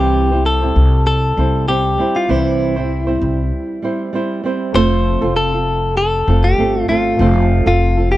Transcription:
Already playing: C2 C3 E3 G3 C4 E4 G4 C5
0.32 G3 C4 E4 C5
0.46 A4
0.62 G3 C4 E4 C5
0.76 C2
1.07 A4
1.37 C2 G3 C4 E4 C5
1.68 G3 C4 E4 G4 C5
1.98 G3 C4 E4 C5
2.16 F4
2.28 C2 C3 E3 G3 C4 E4 C5
2.76 G3 C4 E4 C5
3.07 G3 C4 E4 C5
3.22 C2
3.82 G3 C4 E4 C5
4.13 G3 C4 E4 C5
4.44 G3 C4 E4 C5
4.73 F1 F3 A3 C4 F4 A4 C5
5.21 F1 C4 F4 A4
5.36 A4
5.53 C4 F4 A4
5.97 A4
6.27 F1 A3 C4 F4 A4
6.44 G4
6.58 G1 A3 C4 F4 A4
6.88 G1 A3 C4 F4 A4
7.17 F1 F3 A3 C4 F4 C5
7.21 A4
7.66 F1 C4 F4 A4
7.97 C4 F4 A4
8.12 G4

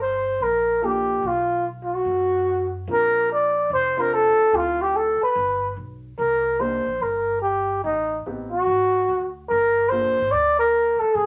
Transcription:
Already playing: G1
0.02 C5
0.40 A#1 A#4
0.82 A#3 D4 F4 G4 A4
1.22 B1
1.27 F4
1.84 F4
1.94 F#4
2.05 F#2
2.88 A#1 C4 D4 F4 A#4
2.93 A#4
3.32 D5
3.70 F1 C5
3.97 C4 D4 F4 A#4 C5
4.14 A4
4.38 muted upright bass stroke
4.52 D2 C4 E4 F4 A4
4.82 G4
4.96 A4
5.21 B4, muted upright bass stroke
5.36 G1
5.77 B1
6.19 C2 A#4
6.59 A#3 D4 D#4 G4 C5
6.86 A#1
7.00 G1 A#4
7.42 G4
7.84 A1 D#4
8.26 A1 B3 C4 D#4 G4
8.52 F#4
8.67 G#1
9.08 D2
9.49 G1 A#4
9.89 A#3 D4 F4 A4 C5
10.05 A#1
10.19 G#1
10.31 D2 D5
10.59 A#4
11.00 A4, muted upright bass stroke
11.15 A#1 G#4

